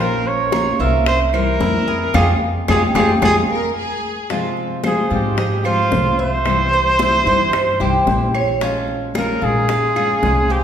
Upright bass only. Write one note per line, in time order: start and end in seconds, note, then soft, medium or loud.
0.00 0.73 A#1 medium
0.79 1.57 C2 medium
1.60 2.11 F2 medium
2.14 2.34 F2 medium
2.68 2.89 F2 medium
2.95 3.16 F2 medium
3.22 3.42 F2 medium
5.11 5.88 G#2 medium
5.92 7.20 C2 medium
7.26 7.77 G2 medium
7.80 8.05 C2 medium
8.07 9.35 A#1 medium
9.42 10.19 A#2 medium
10.23 10.64 C2 medium